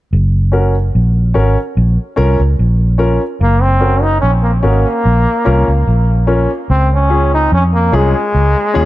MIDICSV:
0, 0, Header, 1, 4, 480
1, 0, Start_track
1, 0, Tempo, 821918
1, 63, Time_signature, 4, 2, 24, 8
1, 5170, End_track
2, 0, Start_track
2, 0, Title_t, "Upright piano"
2, 0, Program_c, 0, 0
2, 302, Note_on_c, 0, 61, 75
2, 308, Note_on_c, 0, 66, 71
2, 310, Note_on_c, 0, 70, 83
2, 432, Note_off_c, 0, 61, 0
2, 434, Note_off_c, 0, 66, 0
2, 436, Note_off_c, 0, 70, 0
2, 784, Note_on_c, 0, 61, 94
2, 786, Note_on_c, 0, 66, 71
2, 790, Note_on_c, 0, 70, 98
2, 913, Note_off_c, 0, 61, 0
2, 914, Note_off_c, 0, 66, 0
2, 915, Note_off_c, 0, 70, 0
2, 1262, Note_on_c, 0, 61, 91
2, 1265, Note_on_c, 0, 65, 81
2, 1270, Note_on_c, 0, 70, 114
2, 1392, Note_off_c, 0, 61, 0
2, 1393, Note_off_c, 0, 65, 0
2, 1395, Note_off_c, 0, 70, 0
2, 1740, Note_on_c, 0, 61, 86
2, 1744, Note_on_c, 0, 65, 74
2, 1747, Note_on_c, 0, 70, 99
2, 1871, Note_off_c, 0, 61, 0
2, 1873, Note_off_c, 0, 65, 0
2, 1874, Note_off_c, 0, 70, 0
2, 2219, Note_on_c, 0, 61, 76
2, 2224, Note_on_c, 0, 66, 69
2, 2227, Note_on_c, 0, 70, 85
2, 2350, Note_off_c, 0, 61, 0
2, 2353, Note_off_c, 0, 66, 0
2, 2354, Note_off_c, 0, 70, 0
2, 2702, Note_on_c, 0, 61, 93
2, 2704, Note_on_c, 0, 66, 82
2, 2708, Note_on_c, 0, 70, 93
2, 2831, Note_off_c, 0, 61, 0
2, 2832, Note_off_c, 0, 66, 0
2, 2835, Note_off_c, 0, 70, 0
2, 3181, Note_on_c, 0, 61, 94
2, 3185, Note_on_c, 0, 65, 87
2, 3189, Note_on_c, 0, 70, 102
2, 3311, Note_off_c, 0, 61, 0
2, 3313, Note_off_c, 0, 65, 0
2, 3315, Note_off_c, 0, 70, 0
2, 3662, Note_on_c, 0, 61, 90
2, 3666, Note_on_c, 0, 65, 77
2, 3668, Note_on_c, 0, 70, 83
2, 3792, Note_off_c, 0, 61, 0
2, 3793, Note_off_c, 0, 65, 0
2, 3794, Note_off_c, 0, 70, 0
2, 4142, Note_on_c, 0, 61, 86
2, 4146, Note_on_c, 0, 65, 72
2, 4148, Note_on_c, 0, 68, 82
2, 4272, Note_off_c, 0, 61, 0
2, 4273, Note_off_c, 0, 65, 0
2, 4275, Note_off_c, 0, 68, 0
2, 4627, Note_on_c, 0, 61, 96
2, 4630, Note_on_c, 0, 65, 83
2, 4633, Note_on_c, 0, 68, 103
2, 4754, Note_off_c, 0, 61, 0
2, 4756, Note_off_c, 0, 65, 0
2, 4757, Note_off_c, 0, 68, 0
2, 5102, Note_on_c, 0, 61, 95
2, 5105, Note_on_c, 0, 65, 86
2, 5110, Note_on_c, 0, 68, 109
2, 5170, Note_off_c, 0, 61, 0
2, 5170, Note_off_c, 0, 65, 0
2, 5170, Note_off_c, 0, 68, 0
2, 5170, End_track
3, 0, Start_track
3, 0, Title_t, "Trombone"
3, 0, Program_c, 1, 57
3, 1996, Note_on_c, 1, 58, 92
3, 2114, Note_on_c, 1, 60, 94
3, 2122, Note_off_c, 1, 58, 0
3, 2347, Note_on_c, 1, 63, 88
3, 2356, Note_off_c, 1, 60, 0
3, 2456, Note_off_c, 1, 63, 0
3, 2459, Note_on_c, 1, 61, 94
3, 2516, Note_off_c, 1, 61, 0
3, 2587, Note_on_c, 1, 58, 74
3, 2639, Note_off_c, 1, 58, 0
3, 2702, Note_on_c, 1, 58, 88
3, 3639, Note_off_c, 1, 58, 0
3, 3917, Note_on_c, 1, 60, 100
3, 4027, Note_off_c, 1, 60, 0
3, 4054, Note_on_c, 1, 61, 98
3, 4266, Note_off_c, 1, 61, 0
3, 4288, Note_on_c, 1, 63, 104
3, 4386, Note_off_c, 1, 63, 0
3, 4404, Note_on_c, 1, 61, 103
3, 4456, Note_off_c, 1, 61, 0
3, 4520, Note_on_c, 1, 58, 88
3, 4648, Note_on_c, 1, 56, 100
3, 4656, Note_off_c, 1, 58, 0
3, 5170, Note_off_c, 1, 56, 0
3, 5170, End_track
4, 0, Start_track
4, 0, Title_t, "Fingered electric bass"
4, 0, Program_c, 2, 33
4, 74, Note_on_c, 2, 30, 97
4, 525, Note_off_c, 2, 30, 0
4, 555, Note_on_c, 2, 34, 74
4, 775, Note_off_c, 2, 34, 0
4, 795, Note_on_c, 2, 32, 73
4, 907, Note_off_c, 2, 32, 0
4, 1033, Note_on_c, 2, 34, 101
4, 1146, Note_off_c, 2, 34, 0
4, 1272, Note_on_c, 2, 36, 81
4, 1386, Note_off_c, 2, 36, 0
4, 1399, Note_on_c, 2, 37, 84
4, 1502, Note_off_c, 2, 37, 0
4, 1513, Note_on_c, 2, 34, 93
4, 1852, Note_off_c, 2, 34, 0
4, 1990, Note_on_c, 2, 30, 104
4, 2443, Note_off_c, 2, 30, 0
4, 2471, Note_on_c, 2, 34, 70
4, 2693, Note_off_c, 2, 34, 0
4, 2711, Note_on_c, 2, 32, 74
4, 2825, Note_off_c, 2, 32, 0
4, 2952, Note_on_c, 2, 34, 100
4, 3066, Note_off_c, 2, 34, 0
4, 3193, Note_on_c, 2, 36, 89
4, 3306, Note_off_c, 2, 36, 0
4, 3317, Note_on_c, 2, 37, 77
4, 3421, Note_off_c, 2, 37, 0
4, 3430, Note_on_c, 2, 34, 79
4, 3771, Note_off_c, 2, 34, 0
4, 3911, Note_on_c, 2, 37, 107
4, 4364, Note_off_c, 2, 37, 0
4, 4392, Note_on_c, 2, 41, 80
4, 4614, Note_off_c, 2, 41, 0
4, 4631, Note_on_c, 2, 36, 90
4, 4745, Note_off_c, 2, 36, 0
4, 4873, Note_on_c, 2, 37, 92
4, 4987, Note_off_c, 2, 37, 0
4, 5116, Note_on_c, 2, 39, 81
4, 5170, Note_off_c, 2, 39, 0
4, 5170, End_track
0, 0, End_of_file